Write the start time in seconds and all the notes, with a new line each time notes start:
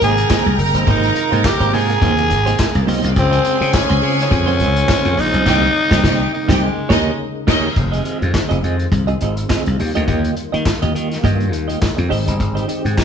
Already playing: C3 G#3 A#3 A#4 G5 A#5
0.01 G#1 A#3 D#4 G4 G#4 C5, closed hi-hat
0.18 closed hi-hat
0.30 A#3 D#4 G4 C5, kick, snare, clap, tambourine
0.46 C2, muted clean electric guitar stroke, closed hi-hat
0.58 F#1, muted clean electric guitar stroke, open hi-hat
0.74 G1 A#3 D#4 G4 C5, closed hi-hat
0.87 G#1 A#3 D#4 F4 G4 C5, kick, closed hi-hat
1.04 closed hi-hat
1.16 muted clean electric guitar stroke, closed hi-hat
1.31 G#2 A#3 D#4 G4 C5, closed hi-hat
1.44 G4, kick, snare, clap, tambourine
1.60 G#1 A#3 D#4 G4 C5, closed hi-hat
1.72 G#2 A#3 D#4 G4 G#4 C5, open hi-hat
1.89 muted clean electric guitar stroke, closed hi-hat
2.01 D#2 A#3 D#4 G4 C5, kick, closed hi-hat
2.18 muted clean electric guitar stroke, closed hi-hat
2.30 G#1, muted clean electric guitar stroke, closed hi-hat
2.46 A#3 D#4 G4 C5, closed hi-hat
2.58 kick, snare, clap, tambourine
2.75 C2 A#3 A#4, muted clean electric guitar stroke, closed hi-hat
2.81 C4 C5
2.87 B1 A#3 C#4 D#4 G4 C5 C#5, open hi-hat
2.95 D#4 D#5
3.03 C2 A#3 D#4 F4 G4 C5 F5, closed hi-hat
3.10 G4 G5
3.16 C#2 C#3 G#3 C4 G#4 C5 G#5, muted clean electric guitar stroke, kick, closed hi-hat
3.31 C4 F4 G#4 C5, closed hi-hat
3.44 C4 F4 G#4 C5, closed hi-hat
3.60 C#3, muted clean electric guitar stroke, closed hi-hat
3.73 C#4, muted clean electric guitar stroke, kick, snare, clap, tambourine
3.89 C#2 C4 F4 G#4 C5, closed hi-hat
4.01 C#3 C4 F4 G#4 C5, open hi-hat
4.18 muted clean electric guitar stroke, snare, closed hi-hat
4.22 C#4
4.31 F2, muted clean electric guitar stroke, kick, closed hi-hat
4.46 C4 F4 G#4 C5, closed hi-hat
4.60 C#2 C4 F4 G#4 C5, closed hi-hat
4.76 muted clean electric guitar stroke, closed hi-hat
4.88 C4 F4 G#4 C5, kick, snare, clap, tambourine
5.04 F2, muted clean electric guitar stroke, closed hi-hat
5.17 A#1 D#4, muted clean electric guitar stroke, open hi-hat
5.33 B1 C4 F4 G#4 C5, closed hi-hat
5.46 C2 C3 A#3 D#4 G4 C5 G5, kick, snare, crash
5.90 C2 A#3 D#4 G4 C5 G5, kick, snare
6.03 C2 A#3 D#4 G4 C5 G5, kick, snare
6.34 D#4
6.48 C2 A#3 D#4 G4 C5 G5, kick, snare
6.61 C#3 G#3
6.89 D#2 A#3 D#4 G#4 C#5 D#5, kick, snare
7.47 D#2 A#3 D#4 G#4 C#5 D#5, kick, snare, crash
7.76 F1 D#3 G#3 C4 F4, muted clean electric guitar stroke, kick, closed hi-hat
7.92 C4 F4 G#4 D#5, closed hi-hat
8.05 C4 F4 G#4 D#5, closed hi-hat
8.20 F2, muted clean electric guitar stroke, closed hi-hat
8.33 muted clean electric guitar stroke, kick, snare, clap
8.49 F1 C4 F4 G#4 D#5, closed hi-hat
8.62 F2 C4 F4 G#4 D#5, closed hi-hat
8.79 closed hi-hat
8.92 C2, muted clean electric guitar stroke, kick, closed hi-hat
9.07 C4 F4 G#4 D#5, closed hi-hat
9.21 G#1 C4 F4 G#4 D#5, closed hi-hat
9.37 muted clean electric guitar stroke, closed hi-hat
9.49 C4 F4 G#4 D#5, kick, snare, clap
9.66 C2, muted clean electric guitar stroke, closed hi-hat
9.79 D#2 G3 A#3, muted clean electric guitar stroke, open hi-hat
9.95 D2 A#3 F4 G4 D#5, closed hi-hat
10.07 D#2 A#3 F4 G4 D#5, kick, closed hi-hat
10.24 closed hi-hat
10.36 muted clean electric guitar stroke, closed hi-hat
10.52 D#3 A#3 F4 G4 D#5, closed hi-hat
10.66 muted clean electric guitar stroke, kick, snare, clap
10.82 D#2 A#3 F4 G4 D#5, closed hi-hat
10.95 D#3 A#3 F4 G4, closed hi-hat
11.11 muted clean electric guitar stroke, snare, closed hi-hat
11.23 G2 A#3 F4 G4 D#5, kick, closed hi-hat
11.40 muted clean electric guitar stroke, closed hi-hat
11.52 D#2, muted clean electric guitar stroke, closed hi-hat
11.68 A#3 F4 G4 D#5, closed hi-hat
11.82 kick, snare, clap
11.97 F2, muted clean electric guitar stroke, closed hi-hat
12.09 G#1 G#3 C4 D#4 G4 C5 D#5, open hi-hat
12.26 G1 D#4 G4 C5 D#5, closed hi-hat
12.39 G#1, muted clean electric guitar stroke, kick, closed hi-hat
12.55 D#4 G4 C5 D#5, closed hi-hat
12.67 D#4 G4 C5 D#5, closed hi-hat
12.84 G#2, muted clean electric guitar stroke, closed hi-hat
12.97 muted clean electric guitar stroke, kick, snare, clap